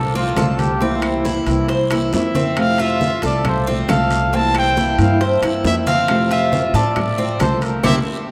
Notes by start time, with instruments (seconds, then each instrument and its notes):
Already playing: upright bass C2, cuban tres A4, trumpet A4
0.14 nylon-string guitar F3 A3 C4 F4, cuban tres C4, trumpet F4, high conga
0.36 upright bass C2, nylon-string guitar F3 A3 C4 F4, cuban tres A4, high bongo, low bongo, high conga, high timbale, low timbale, short guiro, claves
0.59 trumpet G4, high conga, high timbale, short guiro
0.80 nylon-string guitar C3 E3 A#3 C4 E4, cuban tres C4, high bongo, high conga, long guiro
0.96 trumpet F4
1.02 trumpet E4, high bongo, high conga, high timbale, claves
1.24 nylon-string guitar E3 A#3 C4 E4, cuban tres E4, high bongo, high conga, low timbale, short guiro
1.46 upright bass C2, nylon-string guitar E3 A#3 C4 E4, high bongo, high conga, high timbale, short guiro
1.68 cuban tres C5, muted nylon-string guitar stroke, high bongo, high conga, high timbale, long guiro
1.91 nylon-string guitar E3 A#3 C4 E4, cuban tres E4, high bongo, high conga, high timbale, claves
2.13 upright bass F2, nylon-string guitar E3 A#3 C4 E4, trumpet E5, high bongo, low bongo, high conga, low timbale, short guiro
2.35 cuban tres C4, high conga, high timbale, short guiro
2.57 nylon-string guitar C3 F3 A3 C4 F4, trumpet F5, high bongo, high conga, high timbale, long guiro, claves
2.78 cuban tres F4, trumpet E5, high conga, high timbale
3.01 nylon-string guitar F3 A3 C4 F4, high bongo, high conga, low timbale, short guiro
3.22 upright bass C2, nylon-string guitar F3 A3 C4 F4, cuban tres A4, trumpet D5, high conga, high timbale, short guiro
3.45 trumpet C5, muted nylon-string guitar stroke, high bongo, high conga, low conga, high timbale, long guiro, claves
3.67 nylon-string guitar F3 A3 C4 F4, cuban tres C4, high conga
3.88 upright bass C2, nylon-string guitar F3 A3 C4 F4, cuban tres A4, trumpet F5, high bongo, low bongo, high conga, high timbale, low timbale, short guiro, claves
4.11 high timbale, short guiro
4.33 nylon-string guitar C3 E3 A#3 C4 E4, cuban tres C4, trumpet A5, high bongo, long guiro
4.55 trumpet G5, high bongo, high conga, high timbale, claves
4.76 nylon-string guitar E3 A#3 C4 E4, cuban tres E4, high bongo, high conga, low timbale, short guiro
4.98 upright bass G2, nylon-string guitar E3 A#3 C4 E4, high bongo, high conga, high timbale, short guiro
5.02 trumpet F5
5.21 cuban tres C5, trumpet E5, muted nylon-string guitar stroke, high bongo, high conga, high timbale, long guiro
5.42 upright bass G2, nylon-string guitar E3 A#3 C4 E4, cuban tres E4, high bongo, high conga, high timbale, claves
5.64 upright bass F2, nylon-string guitar E3 A#3 C4 E4, trumpet E5, high bongo, low bongo, high conga, low timbale, short guiro
5.86 cuban tres C4, trumpet F5, high conga, high timbale, short guiro
6.08 nylon-string guitar C3 F3 A3 C4 F4, high bongo, high conga, high timbale, long guiro, claves
6.31 cuban tres F4, trumpet E5, high conga, high timbale
6.52 nylon-string guitar F3 A3 C4 F4, high bongo, high conga, low timbale, short guiro
6.74 upright bass A2, nylon-string guitar F3 A3 C4 F4, cuban tres A4, trumpet D5, high conga, high timbale, short guiro
6.96 muted nylon-string guitar stroke, high bongo, high conga, low conga, high timbale, long guiro, claves
7.18 nylon-string guitar F3 A3 C4 F4, cuban tres C4, high conga
7.40 upright bass C2, nylon-string guitar F3 A3 C4 F4, cuban tres A4, trumpet C5, high bongo, low bongo, high conga, high timbale, low timbale, short guiro, claves
7.61 trumpet A#4, high timbale, short guiro
7.83 upright bass C2, nylon-string guitar G3 A#3 C4, cuban tres C4 E4 G4, trumpet E5, low bongo, high conga, high timbale, long guiro, claves